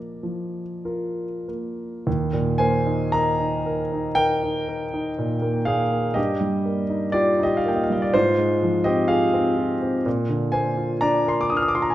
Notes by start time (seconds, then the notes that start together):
Already playing: F3 A#3 F4 A#4 D5
0.23 F3
0.85 F4 A#4
1.48 A#3
2.07 D#2
2.33 A#2
2.58 A#3 C5 G#5
2.87 D#4
3.12 A#4 D#5 A#5
3.40 D#4
3.66 A#4
3.92 D#4
4.15 A#4 G5
4.43 D#4
4.69 A#4
4.94 D#4
5.18 A#2
5.42 A#3
5.65 A#2 G#4 F5
5.91 A#3
6.14 G2 G4 D#5
6.41 G3
6.65 A#3
6.89 D#4
7.12 F4 G4 D5
7.39 D#4 D#5
7.45 G4
7.57 F5
7.65 A#3 G5
7.75 D#5
7.83 F5
7.90 G3 D#5
8.02 D5
8.14 G#2 F4 C5
8.38 G#3
8.63 F3
8.84 C4 G4 D#5
9.08 F4 G#4 F5
9.34 C4
9.57 F4
9.82 C4
10.06 A#2
10.29 D3
10.52 A#3 C5 G#5
10.77 F4
11.01 D4 D5 A#5
11.26 A#4 C6
11.41 D6
11.50 D4 D#6
11.57 F6
11.62 D#6
11.68 D6
11.75 F4 C6
11.82 A#5
11.90 G#5